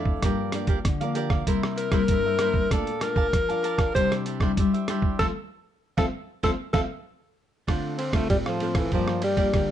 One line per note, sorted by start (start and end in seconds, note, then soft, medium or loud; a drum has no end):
0.00 0.20 F2 medium
0.00 0.20 E3 medium
0.00 0.20 A3 medium
0.00 0.20 D4 medium
0.00 0.21 E4 medium
0.00 0.22 A4 medium
0.00 0.22 D5 medium
0.00 0.23 F5 medium
0.05 kick medium
0.22 0.82 G2 medium
0.22 0.49 F3 medium
0.22 0.49 A#3 medium
0.22 0.50 D4 medium
0.22 0.52 G4 medium
0.22 0.52 A#4 medium
0.22 0.53 D5 medium
0.22 0.54 F5 medium
0.22 kick medium
0.22 cross-stick medium
0.22 closed hi-hat medium
0.52 0.95 F3 soft
0.52 0.95 A#3 soft
0.52 0.96 D4 medium
0.52 0.67 G4 soft
0.52 0.67 A#4 soft
0.52 0.68 D5 soft
0.52 0.68 F5 medium
0.52 cross-stick medium
0.52 closed hi-hat medium
0.67 0.78 G4 medium
0.67 0.78 A#4 medium
0.67 0.78 D5 medium
0.67 0.78 F5 medium
0.67 kick medium
0.67 closed hi-hat soft
0.85 1.44 D3 medium
0.85 kick medium
0.85 cross-stick medium
0.85 closed hi-hat medium
1.01 1.42 F3 medium
1.01 1.42 A#3 medium
1.01 1.43 D4 medium
1.01 1.14 A#4 soft
1.01 1.15 D5 soft
1.01 1.15 F5 medium
1.01 closed hi-hat soft
1.15 1.30 G4 medium
1.15 1.30 A#4 medium
1.15 1.30 D5 medium
1.15 1.29 F5 medium
1.15 closed hi-hat soft
1.30 1.46 A#4 soft
1.30 1.46 D5 soft
1.30 1.45 F5 soft
1.30 kick medium
1.30 cross-stick medium
1.47 2.06 C3 medium
1.47 1.89 G3 medium
1.47 1.89 A#3 medium
1.47 1.75 E4 medium
1.47 1.89 E4 medium
1.47 1.76 A#4 medium
1.47 1.77 C5 medium
1.47 1.77 E5 medium
1.47 kick medium
1.47 closed hi-hat medium
1.63 cross-stick medium
1.76 1.91 E4 soft
1.76 1.91 A#4 medium
1.76 2.74 A#4 loud
1.76 1.92 C5 soft
1.76 1.93 E5 medium
1.76 closed hi-hat medium
1.92 2.34 G3 medium
1.92 2.35 A#3 medium
1.92 2.02 E4 medium
1.92 2.35 E4 medium
1.92 2.02 A#4 medium
1.92 2.02 C5 medium
1.92 2.03 E5 medium
1.92 kick medium
1.92 cross-stick medium
1.92 closed hi-hat soft
2.08 2.68 G2 medium
2.08 2.24 E4 soft
2.08 2.24 A#4 medium
2.08 2.25 C5 soft
2.08 kick medium
2.08 closed hi-hat medium
2.12 2.25 E5 medium
2.26 2.39 A#4 soft
2.26 2.40 C5 soft
2.26 2.40 E5 soft
2.39 2.60 G3 medium
2.39 2.60 A#3 medium
2.39 2.70 E4 medium
2.39 2.61 E4 medium
2.39 2.70 A#4 medium
2.39 2.70 C5 medium
2.39 2.70 E5 medium
2.39 cross-stick medium
2.39 closed hi-hat medium
2.54 kick medium
2.71 3.30 A#2 medium
2.71 2.90 A3 medium
2.71 2.90 D4 medium
2.71 2.90 F4 medium
2.71 3.02 A4 medium
2.71 3.00 D5 medium
2.71 3.00 F5 medium
2.71 3.01 A5 medium
2.71 kick medium
2.71 cross-stick medium
2.71 closed hi-hat medium
2.87 closed hi-hat soft
3.00 3.31 A3 soft
3.00 3.31 D4 medium
3.00 3.31 F4 medium
3.00 3.14 A#4 medium
3.00 3.91 A#4 medium
3.00 3.15 D5 soft
3.00 3.15 F5 medium
3.00 3.16 A5 medium
3.00 cross-stick medium
3.00 closed hi-hat soft
3.16 3.26 A#4 medium
3.16 3.26 D5 medium
3.16 3.26 F5 medium
3.16 3.26 A5 medium
3.16 kick medium
3.33 3.92 F3 medium
3.33 kick medium
3.33 cross-stick medium
3.33 closed hi-hat medium
3.49 3.91 D4 medium
3.49 3.91 F4 medium
3.49 3.62 D5 soft
3.49 3.63 F5 medium
3.49 3.63 A5 soft
3.49 closed hi-hat soft
3.63 3.78 A#4 medium
3.63 3.78 D5 medium
3.63 3.78 F5 medium
3.63 3.77 A5 medium
3.63 closed hi-hat soft
3.78 3.94 D5 soft
3.78 3.94 F5 soft
3.78 3.93 A5 medium
3.78 kick medium
3.78 cross-stick medium
3.78 closed hi-hat soft
3.94 4.55 C3 medium
3.94 4.37 G3 medium
3.94 4.24 D4 medium
3.94 4.37 D4 soft
3.94 4.38 E4 medium
3.94 4.25 G4 medium
3.94 4.14 C5 loud
3.94 4.25 C5 medium
3.94 4.26 E5 medium
3.94 kick medium
3.94 closed hi-hat medium
4.12 cross-stick medium
4.12 closed hi-hat soft
4.26 4.40 D4 soft
4.26 4.40 G4 medium
4.26 4.41 C5 medium
4.26 4.41 E5 soft
4.26 closed hi-hat medium
4.40 4.57 G3 medium
4.40 4.83 D4 medium
4.40 4.50 D4 medium
4.40 4.83 E4 medium
4.40 4.51 G4 medium
4.40 4.51 C5 medium
4.40 4.51 E5 medium
4.40 kick medium
4.40 cross-stick medium
4.57 4.88 G3 medium
4.57 4.72 D4 soft
4.57 4.72 G4 soft
4.57 4.73 C5 medium
4.57 4.72 E5 medium
4.57 kick medium
4.57 closed hi-hat medium
4.73 4.87 G4 soft
4.73 4.88 C5 soft
4.73 4.87 E5 soft
4.73 closed hi-hat soft
4.88 5.17 G3 medium
4.88 5.18 D4 medium
4.88 5.17 D4 medium
4.88 5.18 E4 medium
4.88 5.18 G4 medium
4.88 5.19 C5 medium
4.88 5.19 E5 medium
4.88 cross-stick medium
4.88 closed hi-hat soft
5.02 kick medium
5.19 5.30 F3 loud
5.19 5.30 A3 loud
5.19 5.30 C4 loud
5.19 5.27 A4 loud
5.19 5.30 C5 medium
5.19 5.30 E5 medium
5.19 5.30 F5 medium
5.19 kick medium
5.19 snare medium
5.97 6.08 F3 loud
5.97 6.08 A3 medium
5.97 6.08 C4 loud
5.97 6.05 A4 medium
5.97 6.07 C5 medium
5.97 6.07 E5 medium
5.97 6.07 F5 loud
5.97 kick medium
5.97 snare medium
6.43 6.54 F3 loud
6.43 6.54 A3 medium
6.43 6.54 C4 medium
6.43 6.51 A4 loud
6.43 6.53 C5 medium
6.43 6.53 E5 medium
6.43 6.54 F5 loud
6.43 kick medium
6.43 snare medium
6.73 6.84 F3 loud
6.73 6.84 A3 loud
6.73 6.84 C4 loud
6.73 6.81 A4 loud
6.73 6.84 C5 medium
6.73 6.84 E5 medium
6.73 6.84 F5 medium
6.73 kick medium
6.73 snare medium
7.67 8.27 D3 medium
7.67 7.98 A3 medium
7.67 7.97 C4 soft
7.67 7.97 D4 medium
7.67 7.98 F4 medium
7.67 7.98 A4 medium
7.67 7.98 C5 medium
7.67 7.99 F5 medium
7.67 kick medium
7.67 cross-stick medium
7.67 ride soft
7.98 8.15 C4 medium
7.98 8.12 D4 soft
7.98 8.12 A4 soft
7.98 8.13 C5 soft
7.98 8.14 F5 soft
7.98 ride soft
8.13 8.29 A3 medium
8.13 8.56 A3 medium
8.13 8.56 C4 medium
8.13 8.23 D4 medium
8.13 8.56 F4 medium
8.13 8.23 A4 medium
8.13 8.23 C5 medium
8.13 8.24 F5 medium
8.13 kick medium
8.13 cross-stick medium
8.13 ride soft
8.30 8.89 A2 medium
8.30 8.37 G3 loud
8.30 kick medium
8.30 ride soft
8.46 8.78 F3 medium
8.46 8.61 A4 soft
8.46 8.60 C5 soft
8.46 8.60 F5 soft
8.46 cross-stick medium
8.60 8.87 A3 medium
8.60 8.87 C4 medium
8.60 8.75 D4 medium
8.60 8.87 F4 medium
8.60 8.76 A4 medium
8.60 8.75 C5 medium
8.60 8.74 F5 medium
8.60 ride soft
8.75 8.92 E3 medium
8.75 8.91 A4 soft
8.75 8.91 C5 soft
8.75 8.90 F5 soft
8.75 kick medium
8.75 cross-stick medium
8.75 ride soft
8.92 9.51 G2 medium
8.92 9.34 F3 soft
8.92 9.22 F3 medium
8.92 9.34 A#3 soft
8.92 9.34 D4 medium
8.92 9.22 G4 medium
8.92 9.23 A#4 medium
8.92 9.23 D5 medium
8.92 9.24 F5 medium
8.92 kick medium
8.92 ride soft
9.08 cross-stick medium
9.22 9.71 G3 loud
9.22 9.36 G4 soft
9.22 9.36 A#4 soft
9.22 9.36 D5 soft
9.22 9.37 F5 soft
9.22 ride soft
9.37 9.71 F3 medium
9.37 9.71 A#3 medium
9.37 9.71 D4 medium
9.37 9.47 G4 medium
9.37 9.47 A#4 medium
9.37 9.47 D5 medium
9.37 9.48 F5 medium
9.37 kick medium
9.37 ride soft
9.54 9.71 D3 medium
9.54 9.69 G4 soft
9.54 9.69 A#4 soft
9.54 9.70 D5 soft
9.54 9.69 F5 soft
9.54 kick medium
9.54 cross-stick medium
9.54 ride soft